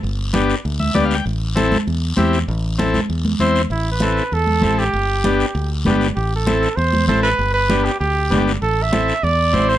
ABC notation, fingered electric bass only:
X:1
M:4/4
L:1/8
Q:1/4=196
K:Am
V:1 name="Fingered electric bass" clef=bass
G,,,4 D,,2 D,,2 | A,,,4 E,,2 E,,2 | A,,,4 E,,2 E,,2 | A,,,4 E,,2 A,,,2 |
G,,,4 D,,2 G,,,2 | A,,,4 E,,2 A,,,2 | G,,,4 D,,2 G,,,2 | A,,,4 E,,2 A,,,2 |]